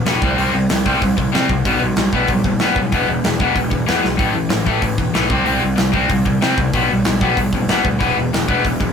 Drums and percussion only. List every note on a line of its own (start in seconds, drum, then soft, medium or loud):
0.06 snare loud
0.06 open hi-hat medium
0.22 kick loud
0.38 open hi-hat medium
0.69 snare loud
0.69 open hi-hat medium
0.86 kick medium
1.02 kick loud
1.02 open hi-hat medium
1.18 kick medium
1.34 snare loud
1.34 open hi-hat medium
1.49 kick medium
1.65 kick medium
1.65 open hi-hat medium
1.96 snare loud
1.96 open hi-hat medium
2.13 kick medium
2.27 kick loud
2.27 open hi-hat medium
2.44 kick medium
2.59 snare loud
2.59 open hi-hat medium
2.76 kick medium
2.92 kick medium
2.92 open hi-hat medium
3.24 snare loud
3.24 open hi-hat medium
3.40 kick medium
3.56 kick medium
3.56 open hi-hat medium
3.71 kick medium
3.88 snare loud
3.88 open hi-hat medium
4.04 snare medium
4.19 kick loud
4.19 open hi-hat medium
4.50 snare loud
4.50 open hi-hat medium
4.67 kick medium
4.82 kick loud
4.82 open hi-hat medium
4.98 kick medium
5.14 snare loud
5.14 open hi-hat medium
5.30 kick loud
5.46 open hi-hat medium
5.77 snare loud
5.77 open hi-hat medium
5.94 kick medium
6.09 kick loud
6.09 open hi-hat medium
6.26 kick medium
6.42 snare loud
6.42 open hi-hat medium
6.58 kick medium
6.74 kick loud
6.74 open hi-hat medium
7.04 snare loud
7.04 open hi-hat medium
7.21 kick medium
7.37 kick loud
7.37 open hi-hat medium
7.53 kick medium
7.68 snare loud
7.68 open hi-hat medium
7.85 kick medium
8.01 kick loud
8.01 open hi-hat medium
8.34 snare loud
8.34 open hi-hat medium
8.48 kick medium
8.65 kick medium
8.65 open hi-hat medium
8.81 kick medium